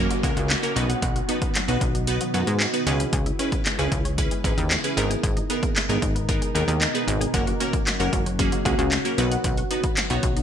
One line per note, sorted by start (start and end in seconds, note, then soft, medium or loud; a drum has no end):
0.00 0.74 A#2 medium
0.00 0.74 C#3 medium
0.00 2.83 F#3 medium
0.00 0.16 A#3 medium
0.00 0.16 C#4 medium
0.00 0.74 C#4 medium
0.00 0.16 F#4 medium
0.00 2.83 F#4 medium
0.00 0.16 A#4 loud
0.00 downlifter medium
0.11 0.23 F#3 medium
0.11 closed hi-hat medium
0.23 0.33 C#2 medium
0.23 0.51 A#3 medium
0.23 0.51 C#4 medium
0.23 0.51 F#4 medium
0.23 0.52 A#4 loud
0.23 0.36 F#5 medium
0.23 kick medium
0.23 closed hi-hat medium
0.37 0.55 C#2 loud
0.37 0.49 F#4 medium
0.37 closed hi-hat soft
0.50 snare medium
0.50 clap loud
0.50 closed hi-hat medium
0.63 0.76 A#3 medium
0.63 0.76 C#4 medium
0.63 0.75 F#4 medium
0.63 0.76 A#4 loud
0.63 closed hi-hat medium
0.76 0.95 B1 loud
0.76 2.85 B2 medium
0.76 2.85 D#3 medium
0.76 0.88 F#3 medium
0.76 1.18 B3 medium
0.76 1.18 D#4 medium
0.76 2.85 D#4 medium
0.76 1.18 F#4 medium
0.76 1.18 B4 loud
0.76 closed hi-hat medium
0.89 1.02 F#5 medium
0.89 closed hi-hat medium
1.02 1.21 B1 loud
1.02 1.15 F#5 loud
1.02 kick loud
1.02 closed hi-hat medium
1.16 1.28 F#4 medium
1.16 closed hi-hat soft
1.28 1.57 B3 medium
1.28 1.57 D#4 medium
1.28 1.41 D#4 medium
1.28 1.57 F#4 medium
1.28 1.57 B4 medium
1.28 closed hi-hat medium
1.42 1.54 B3 medium
1.42 kick medium
1.42 closed hi-hat soft
1.55 1.67 F#3 medium
1.55 snare medium
1.55 clap medium
1.55 closed hi-hat loud
1.68 1.78 B1 medium
1.68 1.96 B3 medium
1.68 1.96 D#4 medium
1.68 1.96 F#4 medium
1.68 1.96 B4 loud
1.68 1.80 F#5 medium
1.68 closed hi-hat soft
1.81 2.19 B1 medium
1.81 1.94 F#4 medium
1.81 kick medium
1.81 closed hi-hat medium
1.95 2.07 D#4 medium
1.95 closed hi-hat medium
2.07 2.26 B3 medium
2.07 2.26 D#4 medium
2.07 2.26 F#4 medium
2.07 2.26 B4 loud
2.07 closed hi-hat medium
2.21 2.33 F#3 medium
2.21 closed hi-hat medium
2.34 2.43 F#2 medium
2.34 2.62 B3 medium
2.34 2.62 D#4 medium
2.34 2.62 F#4 medium
2.34 2.62 B4 loud
2.34 2.46 F#5 medium
2.34 closed hi-hat medium
2.47 2.66 G#2 loud
2.47 2.59 F#4 medium
2.47 closed hi-hat soft
2.60 snare medium
2.60 clap loud
2.60 closed hi-hat medium
2.73 2.87 B3 medium
2.73 2.87 D#4 medium
2.73 2.87 F#4 medium
2.73 2.86 B4 loud
2.73 closed hi-hat medium
2.86 3.05 C#2 loud
2.86 4.95 C#3 medium
2.86 4.95 E3 medium
2.86 2.99 G#3 medium
2.86 7.30 G#3 medium
2.86 4.95 B3 medium
2.86 3.29 C#4 medium
2.86 3.29 E4 medium
2.86 4.95 E4 medium
2.86 3.29 G#4 medium
2.86 3.29 B4 loud
2.86 closed hi-hat medium
3.00 3.12 G#4 medium
3.00 closed hi-hat medium
3.13 3.32 C#2 loud
3.13 3.25 G#4 loud
3.13 kick medium
3.13 closed hi-hat medium
3.26 3.38 E4 medium
3.26 closed hi-hat soft
3.39 3.67 C#4 medium
3.39 3.51 C#4 medium
3.39 3.67 E4 medium
3.39 3.67 G#4 medium
3.39 3.67 B4 medium
3.39 closed hi-hat medium
3.52 3.65 B3 medium
3.52 kick medium
3.52 closed hi-hat soft
3.66 3.78 G#3 medium
3.66 snare medium
3.66 clap medium
3.66 closed hi-hat loud
3.79 3.88 C#2 medium
3.79 4.07 C#4 medium
3.79 4.07 E4 medium
3.79 3.91 G#4 medium
3.79 4.07 G#4 medium
3.79 4.07 B4 loud
3.79 closed hi-hat soft
3.92 4.29 C#2 medium
3.92 4.04 E4 medium
3.92 kick medium
3.92 closed hi-hat medium
4.05 4.17 C#4 medium
4.05 closed hi-hat medium
4.18 4.37 C#4 medium
4.18 4.37 E4 medium
4.18 4.37 G#4 medium
4.18 4.37 B4 loud
4.18 kick medium
4.18 closed hi-hat medium
4.31 4.43 G#3 medium
4.31 closed hi-hat medium
4.44 4.54 G#1 medium
4.44 4.72 C#4 medium
4.44 4.72 E4 medium
4.44 4.57 G#4 medium
4.44 4.73 G#4 medium
4.44 4.73 B4 loud
4.44 kick medium
4.44 closed hi-hat medium
4.58 4.76 D#2 loud
4.58 4.70 E4 medium
4.58 closed hi-hat soft
4.71 snare medium
4.71 clap loud
4.71 closed hi-hat medium
4.84 4.97 C#4 medium
4.84 4.97 E4 medium
4.84 4.96 G#4 medium
4.84 4.97 B4 loud
4.84 closed hi-hat medium
4.97 5.16 G#1 loud
4.97 7.32 B2 medium
4.97 7.31 D#3 medium
4.97 5.09 G#3 medium
4.97 5.39 B3 medium
4.97 7.32 D#4 medium
4.97 5.39 D#4 medium
4.97 5.39 G#4 medium
4.97 7.32 A#4 medium
4.97 5.39 A#4 loud
4.97 closed hi-hat medium
5.10 5.22 G#4 medium
5.10 closed hi-hat medium
5.23 5.42 G#1 loud
5.23 5.36 G#4 loud
5.23 kick loud
5.23 closed hi-hat medium
5.37 5.49 D#4 medium
5.37 closed hi-hat soft
5.50 5.78 B3 medium
5.50 5.62 B3 medium
5.50 5.78 D#4 medium
5.50 5.78 G#4 medium
5.50 5.78 A#4 medium
5.50 closed hi-hat medium
5.63 5.75 A#3 medium
5.63 kick medium
5.63 closed hi-hat soft
5.76 5.88 G#3 medium
5.76 snare medium
5.76 clap medium
5.76 closed hi-hat loud
5.89 5.98 G#1 medium
5.89 6.17 B3 loud
5.89 6.17 D#4 medium
5.89 6.01 G#4 medium
5.89 6.17 G#4 medium
5.89 6.17 A#4 loud
5.89 closed hi-hat soft
6.02 6.40 G#1 medium
6.02 6.14 D#4 medium
6.02 kick medium
6.02 closed hi-hat medium
6.15 6.28 B3 medium
6.15 closed hi-hat soft
6.29 6.47 B3 medium
6.29 6.47 D#4 medium
6.29 6.48 G#4 medium
6.29 6.48 A#4 loud
6.29 kick medium
6.29 closed hi-hat medium
6.42 6.54 G#3 medium
6.42 closed hi-hat medium
6.55 6.64 D#2 medium
6.55 6.83 B3 medium
6.55 6.83 D#4 medium
6.55 6.67 G#4 medium
6.55 6.83 G#4 medium
6.55 6.83 A#4 medium
6.55 closed hi-hat medium
6.68 6.87 D#2 loud
6.68 6.80 D#4 medium
6.68 closed hi-hat soft
6.81 snare medium
6.81 clap loud
6.81 closed hi-hat medium
6.94 7.22 B3 medium
6.94 7.22 D#4 medium
6.94 7.23 G#4 medium
6.94 7.23 B4 loud
6.94 closed hi-hat medium
7.08 7.26 G#1 loud
7.08 7.20 G#3 medium
7.08 closed hi-hat medium
7.21 7.33 G#4 medium
7.21 closed hi-hat medium
7.34 7.53 F#1 loud
7.34 9.16 A#2 medium
7.34 9.16 C#3 medium
7.34 9.16 F#3 medium
7.34 7.53 A#3 medium
7.34 7.53 C#4 medium
7.34 9.16 C#4 medium
7.34 10.43 F#4 medium
7.34 7.53 F#4 medium
7.34 7.53 A#4 loud
7.34 7.46 F#5 loud
7.34 kick loud
7.34 closed hi-hat medium
7.47 7.59 F#4 medium
7.47 closed hi-hat soft
7.60 7.88 A#3 medium
7.60 7.72 C#4 medium
7.60 7.88 C#4 medium
7.60 7.88 F#4 medium
7.60 7.88 A#4 loud
7.60 closed hi-hat medium
7.73 7.86 A#3 medium
7.73 kick medium
7.73 closed hi-hat soft
7.87 7.99 F#3 medium
7.87 snare medium
7.87 clap medium
7.87 closed hi-hat loud
7.99 8.09 F#1 medium
7.99 8.28 A#3 medium
7.99 8.28 C#4 medium
7.99 8.28 F#4 medium
7.99 8.28 A#4 loud
7.99 8.12 F#5 medium
7.99 closed hi-hat soft
8.13 8.50 F#1 medium
8.13 8.25 F#4 medium
8.13 kick medium
8.13 closed hi-hat medium
8.26 8.38 C#4 medium
8.26 closed hi-hat medium
8.39 8.58 A#3 medium
8.39 8.58 C#4 medium
8.39 8.58 F#4 medium
8.39 8.58 G#4 loud
8.39 kick medium
8.39 closed hi-hat medium
8.52 8.65 F#3 medium
8.52 closed hi-hat medium
8.65 8.75 C#2 medium
8.65 8.93 A#3 medium
8.65 8.94 C#4 medium
8.65 8.94 F#4 medium
8.65 8.94 G#4 loud
8.65 8.78 F#5 medium
8.65 kick medium
8.65 closed hi-hat medium
8.79 8.97 C#2 loud
8.79 8.91 F#4 medium
8.79 closed hi-hat soft
8.92 snare medium
8.92 clap loud
8.92 closed hi-hat medium
9.05 9.18 A#3 medium
9.05 9.18 C#4 medium
9.05 9.17 F#4 medium
9.05 9.18 A#4 loud
9.05 closed hi-hat medium
9.18 9.37 B1 loud
9.18 10.43 B2 medium
9.18 10.43 D#3 medium
9.18 9.30 F#3 medium
9.18 10.43 F#3 medium
9.18 9.60 B3 loud
9.18 9.60 D#4 medium
9.18 10.43 D#4 medium
9.18 9.60 F#4 medium
9.18 9.61 B4 loud
9.18 closed hi-hat medium
9.32 9.44 F#5 medium
9.32 closed hi-hat medium
9.44 9.63 B1 loud
9.44 9.57 F#5 loud
9.44 kick loud
9.44 closed hi-hat medium
9.57 9.70 F#4 medium
9.57 closed hi-hat soft
9.71 9.99 B3 medium
9.71 9.99 D#4 medium
9.71 9.83 D#4 medium
9.71 9.99 F#4 medium
9.71 9.99 B4 medium
9.71 closed hi-hat medium
9.84 9.96 B3 medium
9.84 kick medium
9.84 closed hi-hat soft
9.97 10.09 F#3 medium
9.97 snare medium
9.97 clap medium
9.97 closed hi-hat loud
10.10 10.20 B1 medium
10.10 10.38 B3 medium
10.10 10.38 D#4 medium
10.10 10.38 F#4 medium
10.10 10.39 C#5 loud
10.10 10.22 F#5 medium
10.10 closed hi-hat soft
10.23 10.43 B1 medium
10.23 10.36 F#4 medium
10.23 kick medium
10.23 closed hi-hat medium
10.37 10.43 D#4 medium
10.37 closed hi-hat soft